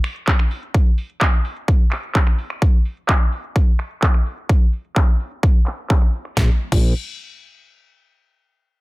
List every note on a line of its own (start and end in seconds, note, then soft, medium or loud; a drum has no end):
0.04 finger snap medium
0.04 open hi-hat loud
0.16 closed hi-hat soft
0.28 kick loud
0.28 clap loud
0.39 finger snap medium
0.39 closed hi-hat soft
0.51 open hi-hat loud
0.63 closed hi-hat medium
0.74 kick loud
0.86 closed hi-hat soft
0.98 open hi-hat loud
1.10 closed hi-hat medium
1.21 kick loud
1.21 clap loud
1.33 closed hi-hat soft
1.45 open hi-hat loud
1.57 closed hi-hat medium
1.68 kick loud
1.92 finger snap medium
1.92 clap soft
1.92 open hi-hat loud
2.03 closed hi-hat soft
2.15 kick loud
2.15 clap loud
2.27 finger snap medium
2.38 open hi-hat loud
2.50 finger snap medium
2.50 closed hi-hat medium
2.62 kick loud
2.74 closed hi-hat soft
2.85 open hi-hat loud
2.97 closed hi-hat medium
3.09 kick loud
3.09 clap loud
3.32 open hi-hat loud
3.44 closed hi-hat medium
3.56 kick loud
3.79 finger snap medium
3.79 open hi-hat loud
3.91 closed hi-hat medium
4.03 kick loud
4.03 clap loud
4.14 finger snap medium
4.26 open hi-hat loud
4.38 closed hi-hat medium
4.49 kick loud
4.73 open hi-hat loud
4.85 closed hi-hat medium
4.96 kick loud
4.96 clap loud
5.20 open hi-hat loud
5.31 closed hi-hat medium
5.43 kick loud
5.67 finger snap medium
5.67 clap soft
5.67 open hi-hat loud
5.78 closed hi-hat medium
5.90 kick loud
5.90 clap loud
6.02 finger snap medium
6.14 open hi-hat loud
6.25 finger snap medium
6.37 6.50 A#1 loud
6.37 kick loud
6.37 snare medium
6.72 6.94 A#1 medium
6.72 kick loud
6.72 crash medium